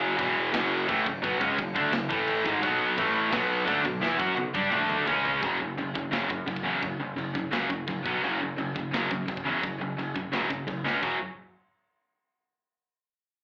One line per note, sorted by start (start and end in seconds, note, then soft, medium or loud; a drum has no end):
0.00 0.17 F#1 loud
0.00 0.17 F#2 loud
0.00 0.18 C#3 medium
0.00 0.18 F#3 medium
0.17 0.51 E1 loud
0.17 0.53 E2 loud
0.17 0.53 B2 medium
0.17 0.53 E3 loud
0.17 kick loud
0.17 crash medium
0.53 0.86 F#1 loud
0.53 0.88 F#2 loud
0.53 0.87 C#3 medium
0.53 0.88 F#3 loud
0.53 kick loud
0.53 snare loud
0.53 crash medium
0.88 1.05 A1 loud
0.88 1.05 A2 medium
0.88 1.06 E3 medium
0.88 1.06 A3 loud
0.88 kick loud
0.88 crash medium
1.06 1.23 F#1 medium
1.06 1.20 F#2 medium
1.06 1.20 C#3 medium
1.06 kick medium
1.22 1.40 B1 medium
1.22 1.39 B2 loud
1.22 1.40 F#3 loud
1.22 1.40 B3 loud
1.22 kick loud
1.22 crash medium
1.40 1.57 C#2 loud
1.40 1.57 C#3 medium
1.40 1.58 G#3 medium
1.40 1.58 C#4 loud
1.40 kick loud
1.58 1.75 F#1 medium
1.58 1.72 F#2 medium
1.58 1.72 C#3 medium
1.58 kick loud
1.58 crash medium
1.75 1.92 D2 loud
1.75 1.92 D3 medium
1.75 1.93 A3 loud
1.75 1.93 D4 loud
1.75 kick loud
1.92 2.09 F#1 medium
1.92 2.07 F#2 medium
1.92 2.07 C#3 medium
1.92 snare loud
1.92 crash medium
2.09 2.43 A1 loud
2.09 2.44 A2 medium
2.09 2.44 E3 loud
2.09 2.45 A3 loud
2.09 kick loud
2.27 crash medium
2.45 2.62 G#1 loud
2.45 2.62 G#2 loud
2.45 2.62 D#3 loud
2.45 2.63 G#3 loud
2.45 kick loud
2.63 2.96 B1 loud
2.63 2.97 B2 loud
2.63 2.97 F#3 loud
2.63 2.98 B3 loud
2.63 kick loud
2.63 crash medium
2.98 3.30 A1 loud
2.98 3.31 A2 loud
2.98 3.32 E3 loud
2.98 3.33 A3 loud
2.98 kick loud
2.98 crash medium
3.32 3.65 B1 loud
3.32 3.65 B2 loud
3.32 3.66 F#3 loud
3.32 3.66 B3 loud
3.32 kick loud
3.32 snare loud
3.32 crash medium
3.66 3.84 D2 loud
3.66 3.84 D3 loud
3.66 3.84 A3 medium
3.66 3.84 D4 loud
3.66 kick loud
3.66 crash medium
3.84 4.01 B1 medium
3.84 3.99 B2 medium
3.84 3.99 F#3 medium
3.84 kick medium
4.01 4.19 E2 medium
4.01 4.18 E3 loud
4.01 4.19 B3 loud
4.01 4.19 E4 loud
4.01 snare medium
4.18 4.36 F#2 medium
4.18 4.35 F#3 medium
4.18 4.36 C#4 loud
4.18 4.37 F#4 loud
4.18 kick loud
4.36 4.54 B1 medium
4.36 4.51 B2 medium
4.36 4.51 F#3 medium
4.36 high tom medium
4.54 4.71 G2 loud
4.54 4.70 G3 medium
4.54 4.70 D4 loud
4.54 4.72 G4 loud
4.54 kick loud
4.70 5.05 D2 loud
4.70 5.05 D3 loud
4.70 5.06 A3 loud
4.70 5.06 D4 loud
4.70 mid tom loud
4.90 mid tom medium
5.06 5.40 C#2 loud
5.06 5.41 C#3 medium
5.06 5.42 G#3 medium
5.06 5.42 C#4 loud
5.06 floor tom loud
5.25 floor tom medium
5.42 5.55 F#1 loud
5.42 5.58 F#2 medium
5.42 5.59 C#3 medium
5.42 5.59 F#3 loud
5.42 kick loud
5.42 china medium
5.60 5.73 F#1 medium
5.60 5.76 F#2 medium
5.60 5.76 C#3 medium
5.77 5.90 F#1 loud
5.77 5.93 F#2 medium
5.77 5.94 C#3 medium
5.77 china medium
5.94 6.08 F#1 medium
5.94 6.10 F#2 medium
5.94 6.10 C#3 medium
5.94 kick loud
6.11 6.25 F#1 loud
6.11 6.28 F#2 medium
6.11 6.28 C#3 medium
6.11 6.29 F#3 medium
6.11 snare loud
6.11 china medium
6.29 6.45 F#2 medium
6.29 6.43 F#2 medium
6.29 6.45 C#3 medium
6.29 kick medium
6.46 6.60 F#1 medium
6.46 6.62 F#2 medium
6.46 6.63 C#3 medium
6.46 kick medium
6.46 china medium
6.56 kick medium
6.63 6.78 E2 loud
6.63 6.80 F#2 medium
6.63 6.80 C#3 medium
6.63 6.81 F#3 loud
6.81 6.96 F#1 medium
6.81 6.98 F#2 medium
6.81 6.98 C#3 medium
6.81 kick loud
6.81 china medium
6.99 7.12 F#1 medium
6.99 7.15 F#2 medium
6.99 7.15 C#3 medium
7.16 7.43 F#1 medium
7.16 7.33 F#2 medium
7.16 7.33 C#3 medium
7.16 china medium
7.35 7.50 F#2 medium
7.35 7.51 C#3 medium
7.35 kick medium
7.51 7.65 C#2 loud
7.51 7.68 F#2 loud
7.51 7.69 C#3 medium
7.51 7.69 F#3 loud
7.51 snare loud
7.51 china medium
7.69 7.83 F#1 medium
7.69 7.85 F#2 medium
7.69 7.86 C#3 medium
7.69 kick medium
7.87 8.01 A#1 medium
7.87 8.03 F#2 medium
7.87 8.04 C#3 medium
7.87 kick medium
7.87 china medium
8.05 8.18 B1 medium
8.05 8.22 B2 medium
8.05 8.22 F#3 loud
8.05 8.22 B3 loud
8.05 kick loud
8.23 8.36 F#1 medium
8.23 8.39 F#2 medium
8.23 8.40 C#3 loud
8.23 8.40 F#3 medium
8.23 china medium
8.40 8.53 F#1 medium
8.40 8.57 F#2 medium
8.40 8.57 C#3 medium
8.57 8.70 F#1 medium
8.57 8.74 F#2 medium
8.57 8.74 C#3 medium
8.57 china medium
8.76 8.88 F#1 medium
8.76 8.91 F#2 medium
8.76 8.91 C#3 medium
8.76 kick medium
8.93 9.06 F#1 medium
8.93 9.09 F#2 medium
8.93 9.10 C#3 medium
8.93 9.10 F#3 medium
8.93 snare loud
8.93 china medium
9.11 9.24 F#2 medium
9.11 9.27 F#2 medium
9.11 9.27 C#3 medium
9.11 kick loud
9.28 9.41 F#1 loud
9.28 9.43 F#2 medium
9.28 9.44 C#3 medium
9.28 kick medium
9.28 china medium
9.37 kick medium
9.45 9.59 E2 medium
9.45 9.61 F#2 medium
9.45 9.62 C#3 loud
9.45 9.62 F#3 loud
9.62 9.76 F#1 medium
9.62 9.78 F#2 medium
9.62 9.79 C#3 medium
9.62 kick loud
9.62 china medium
9.80 9.93 F#1 medium
9.80 9.96 F#2 medium
9.80 9.97 C#3 medium
9.98 10.23 F#1 medium
9.98 10.14 F#2 medium
9.98 10.14 C#3 medium
9.98 china medium
10.15 10.31 F#2 medium
10.15 10.31 C#3 medium
10.15 kick medium
10.32 10.46 C#2 loud
10.32 10.48 F#2 medium
10.32 10.49 C#3 medium
10.32 10.49 F#3 medium
10.32 snare loud
10.32 china medium
10.49 10.63 F#1 medium
10.49 10.66 F#2 medium
10.49 10.66 C#3 medium
10.49 kick loud
10.67 10.81 F#1 medium
10.67 10.83 F#2 medium
10.67 10.83 C#3 medium
10.67 kick medium
10.67 china medium
10.84 10.98 C#2 medium
10.84 11.01 C#3 medium
10.84 11.02 G#3 loud
10.84 11.02 C#4 loud
10.84 snare medium
11.02 11.19 F#1 loud
11.02 11.16 F#2 medium
11.02 11.17 C#3 medium
11.02 11.17 F#3 loud
11.02 kick loud
11.02 crash medium